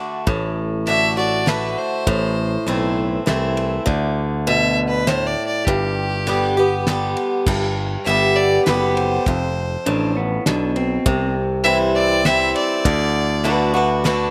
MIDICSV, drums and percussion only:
0, 0, Header, 1, 2, 480
1, 0, Start_track
1, 0, Key_signature, 1, "major"
1, 0, Tempo, 598802
1, 220, Time_signature, 3, 2, 24, 8
1, 11466, End_track
2, 0, Start_track
2, 0, Title_t, "Drums"
2, 216, Note_on_c, 9, 51, 51
2, 217, Note_on_c, 9, 36, 97
2, 296, Note_off_c, 9, 51, 0
2, 297, Note_off_c, 9, 36, 0
2, 695, Note_on_c, 9, 51, 53
2, 776, Note_off_c, 9, 51, 0
2, 1179, Note_on_c, 9, 38, 69
2, 1179, Note_on_c, 9, 51, 50
2, 1259, Note_off_c, 9, 38, 0
2, 1259, Note_off_c, 9, 51, 0
2, 1658, Note_on_c, 9, 36, 93
2, 1658, Note_on_c, 9, 51, 55
2, 1738, Note_off_c, 9, 51, 0
2, 1739, Note_off_c, 9, 36, 0
2, 2144, Note_on_c, 9, 51, 57
2, 2224, Note_off_c, 9, 51, 0
2, 2621, Note_on_c, 9, 38, 63
2, 2621, Note_on_c, 9, 51, 54
2, 2702, Note_off_c, 9, 38, 0
2, 2702, Note_off_c, 9, 51, 0
2, 2863, Note_on_c, 9, 51, 53
2, 2943, Note_off_c, 9, 51, 0
2, 3101, Note_on_c, 9, 36, 93
2, 3103, Note_on_c, 9, 51, 56
2, 3181, Note_off_c, 9, 36, 0
2, 3183, Note_off_c, 9, 51, 0
2, 3585, Note_on_c, 9, 51, 50
2, 3665, Note_off_c, 9, 51, 0
2, 4066, Note_on_c, 9, 38, 65
2, 4066, Note_on_c, 9, 51, 44
2, 4146, Note_off_c, 9, 38, 0
2, 4146, Note_off_c, 9, 51, 0
2, 4544, Note_on_c, 9, 36, 90
2, 4546, Note_on_c, 9, 51, 48
2, 4624, Note_off_c, 9, 36, 0
2, 4626, Note_off_c, 9, 51, 0
2, 5024, Note_on_c, 9, 51, 57
2, 5105, Note_off_c, 9, 51, 0
2, 5504, Note_on_c, 9, 38, 70
2, 5504, Note_on_c, 9, 51, 51
2, 5585, Note_off_c, 9, 38, 0
2, 5585, Note_off_c, 9, 51, 0
2, 5745, Note_on_c, 9, 51, 56
2, 5825, Note_off_c, 9, 51, 0
2, 5983, Note_on_c, 9, 49, 86
2, 5984, Note_on_c, 9, 36, 98
2, 6063, Note_off_c, 9, 49, 0
2, 6065, Note_off_c, 9, 36, 0
2, 6469, Note_on_c, 9, 51, 61
2, 6549, Note_off_c, 9, 51, 0
2, 6946, Note_on_c, 9, 38, 73
2, 6946, Note_on_c, 9, 51, 52
2, 7026, Note_off_c, 9, 38, 0
2, 7026, Note_off_c, 9, 51, 0
2, 7189, Note_on_c, 9, 51, 55
2, 7270, Note_off_c, 9, 51, 0
2, 7424, Note_on_c, 9, 51, 55
2, 7427, Note_on_c, 9, 36, 97
2, 7504, Note_off_c, 9, 51, 0
2, 7507, Note_off_c, 9, 36, 0
2, 7905, Note_on_c, 9, 51, 55
2, 7985, Note_off_c, 9, 51, 0
2, 8385, Note_on_c, 9, 38, 69
2, 8385, Note_on_c, 9, 51, 50
2, 8465, Note_off_c, 9, 38, 0
2, 8465, Note_off_c, 9, 51, 0
2, 8624, Note_on_c, 9, 51, 51
2, 8704, Note_off_c, 9, 51, 0
2, 8865, Note_on_c, 9, 36, 109
2, 8865, Note_on_c, 9, 51, 59
2, 8945, Note_off_c, 9, 36, 0
2, 8946, Note_off_c, 9, 51, 0
2, 9344, Note_on_c, 9, 51, 56
2, 9424, Note_off_c, 9, 51, 0
2, 9819, Note_on_c, 9, 38, 72
2, 9819, Note_on_c, 9, 51, 56
2, 9900, Note_off_c, 9, 38, 0
2, 9900, Note_off_c, 9, 51, 0
2, 10064, Note_on_c, 9, 51, 56
2, 10145, Note_off_c, 9, 51, 0
2, 10300, Note_on_c, 9, 51, 58
2, 10302, Note_on_c, 9, 36, 92
2, 10381, Note_off_c, 9, 51, 0
2, 10382, Note_off_c, 9, 36, 0
2, 10782, Note_on_c, 9, 51, 57
2, 10863, Note_off_c, 9, 51, 0
2, 11261, Note_on_c, 9, 38, 72
2, 11261, Note_on_c, 9, 51, 53
2, 11341, Note_off_c, 9, 38, 0
2, 11341, Note_off_c, 9, 51, 0
2, 11466, End_track
0, 0, End_of_file